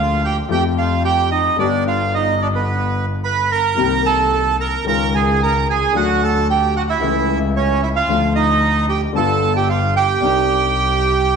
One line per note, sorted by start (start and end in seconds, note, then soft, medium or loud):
0.00 0.46 D2 medium
0.00 0.46 D3 medium
0.00 0.45 F3 soft
0.00 0.45 A#3 soft
0.00 0.46 D4 soft
0.00 0.21 F4 medium
0.00 0.47 G4 medium
0.00 0.26 F5 medium
0.25 0.37 G4 medium
0.25 0.37 G5 medium
0.49 1.53 F2 medium
0.49 1.53 F3 medium
0.49 1.53 A3 soft
0.49 1.53 C4 soft
0.49 0.64 G4 medium
0.49 1.54 G4 medium
0.49 0.63 G5 medium
0.78 1.03 F4 medium
0.78 1.03 F5 medium
1.05 1.30 G4 medium
1.05 1.30 G5 medium
1.31 1.57 D#4 medium
1.31 1.57 D#5 medium
1.56 3.66 G1 medium
1.56 3.67 G1 medium
1.56 3.66 G2 medium
1.56 3.65 D3 soft
1.56 3.66 G3 soft
1.56 3.67 B3 soft
1.56 1.85 D4 medium
1.56 3.67 G4 medium
1.56 1.84 D5 medium
1.87 2.12 F4 medium
1.87 2.15 F5 medium
2.14 2.39 D#4 medium
2.14 2.42 D#5 medium
2.42 2.48 D4 medium
2.42 2.47 D5 medium
2.55 3.06 B3 medium
2.55 3.06 B4 medium
3.24 3.49 B4 medium
3.24 3.52 B5 medium
3.51 4.02 A#4 medium
3.51 4.07 A#5 medium
3.75 4.81 C2 medium
3.75 4.81 C3 medium
3.75 4.80 D#3 soft
3.75 4.80 A#3 soft
3.75 4.81 C4 soft
3.75 4.82 G4 soft
4.06 4.56 A4 medium
4.06 4.56 A5 medium
4.60 4.86 A#4 medium
4.60 4.85 A#5 medium
4.85 5.90 C#2 medium
4.85 5.90 C#3 medium
4.85 5.89 D#3 soft
4.85 5.89 G#3 soft
4.85 5.90 C#4 soft
4.85 5.91 F4 medium
4.85 5.13 A#4 medium
4.85 5.15 A#5 medium
5.15 5.40 G#4 medium
5.15 5.42 G#5 medium
5.43 5.68 A#4 medium
5.43 5.67 A#5 medium
5.70 5.94 G#4 medium
5.70 5.97 G#5 medium
5.94 6.97 D2 medium
5.94 6.97 D3 medium
5.94 6.97 F#3 soft
5.94 6.97 A3 soft
5.94 6.21 F#4 medium
5.94 6.98 F#4 medium
5.94 6.23 F#5 medium
6.23 6.48 A4 medium
6.23 6.48 A5 medium
6.50 6.75 G4 medium
6.50 6.74 G5 medium
6.76 6.83 F#4 medium
6.76 6.82 F#5 medium
6.89 7.39 E4 medium
6.89 7.39 E5 medium
7.01 8.04 C#2 medium
7.01 8.04 C#3 medium
7.01 8.03 E3 soft
7.01 8.04 A3 soft
7.01 8.05 E4 medium
7.56 7.81 C#4 medium
7.56 7.81 C#5 medium
7.83 7.89 E4 medium
7.83 7.89 E5 medium
7.96 8.33 F4 medium
7.96 8.33 F5 medium
8.09 9.10 D2 medium
8.09 9.10 F3 soft
8.09 9.11 A3 soft
8.09 9.11 F4 medium
8.35 8.86 D#4 medium
8.35 8.85 D#5 medium
8.89 9.01 G4 medium
8.89 9.01 G5 medium
9.13 10.17 G1 medium
9.13 10.17 G2 medium
9.13 10.16 D3 medium
9.13 10.16 G3 soft
9.13 10.17 B3 soft
9.13 9.57 A5 medium
9.17 10.18 F4 medium
9.17 9.53 A4 medium
9.56 9.69 G4 medium
9.56 9.68 G5 medium
9.69 9.95 F4 medium
9.69 9.94 F5 medium
9.96 11.36 G4 medium
9.96 11.36 G5 medium
10.20 11.36 C2 medium
10.20 11.36 C3 medium
10.20 11.36 G3 soft
10.20 11.36 C4 soft
10.20 11.36 D4 soft
10.20 11.36 D#4 medium